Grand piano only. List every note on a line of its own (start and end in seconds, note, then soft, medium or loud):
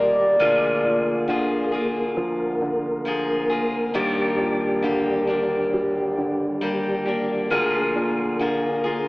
0.00 0.36 D#2 soft
0.00 0.36 D3 soft
0.00 0.36 G3 soft
0.41 3.91 D2 soft
0.85 2.58 A#2 soft
1.29 2.60 D3 soft
2.17 3.91 F3 soft
2.62 3.91 D3 soft
3.95 7.47 D#2 medium
4.40 6.14 A#2 soft
4.84 6.17 D3 soft
5.74 7.48 G3 soft
6.18 7.47 D3 soft
7.52 9.08 D2 medium
7.96 9.08 A#2 soft
8.41 9.08 D3 soft